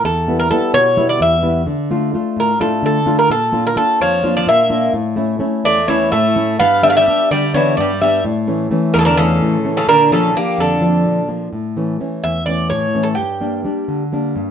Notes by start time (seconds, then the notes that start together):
0.04 E2 A4
0.28 G3 B3 E4
0.39 A#4
0.51 G3 B3 E4 A4
0.74 B2 C#5
0.97 G3 B3 E4
1.09 D5
1.20 E2 E5
1.42 G3 B3 E4
1.67 D3
1.90 A3 D4 F4
2.14 A3 D4 F4
2.36 A2 A#4
2.60 A3 D4 F4 A4
2.83 D3 A4
3.06 A3 D4 F4
3.19 A#4
3.30 A#2 A4
3.52 A#3 D4 F4
3.67 A#4
3.76 A#3 D4 F4 A4
4.01 F2 F3 C#5
4.23 A#3 D4 F4
4.37 F3 D5
4.47 A#2 A#3 E5
4.70 A#3 D4 F4
4.93 A2
5.16 A3 C#4 E4
5.39 A3 C#4 E4
5.64 E2 A3 D5
5.88 E3 A3 C#4 E4 C#5
6.12 A2 A3 E5
6.36 A3 C#4 E4
6.59 G2 B3 F5
6.83 G3 B3 D4 E5
6.90 A3 F5
6.97 G3 E5
7.07 G3 B3 D4
7.31 D3 G3 D5
7.54 E3 G3 B3 D4 C#5
7.77 G2 G3 D5
8.01 G3 B3 D4 E5
8.25 A2
8.47 E3 A3 C#4
8.71 E3 A3 C#4
8.94 E2 C#3 A#4
8.99 C#3 A4
9.05 D3 A#4
9.17 C#3 E3 A3 C#4 A4
9.42 A2
9.64 E3 A3 C#4
9.77 C#3 A4
9.87 A#2 D3 A#4
10.11 C#3 F3 A#3 D4 A4
10.34 F3 A#3 D4 G4
10.58 F2 D3 A4
10.81 F3 A#3 D4
11.05 A#2
11.28 F3 A#3 D4
11.53 A2
11.77 E3 A3 C#4
12.00 E3 A3 C#4
12.24 E2 E5
12.46 E3 A3 C#4 D5
12.70 A2 C#5
12.94 E3 A3 C#4
13.03 A4
13.15 G2 G4
13.40 G3 A#3 D4
13.64 G3 A#3 D4
13.88 D3
14.12 G3 A#3 D4
14.36 G2